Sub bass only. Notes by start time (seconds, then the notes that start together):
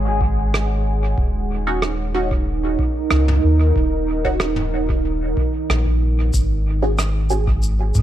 Already playing: G#1
1.18 D#1
3.11 C#2
3.44 D#2
3.76 D#1
5.69 A#1
6.34 G#1
7.95 G#2